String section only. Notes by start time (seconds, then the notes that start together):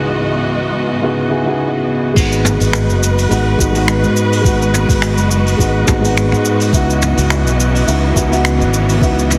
Already playing: C#2 G#2 E3 B3 F#4 D#5
2.16 G#3 F#4 B4 D#5
6.73 C#3 E3 B3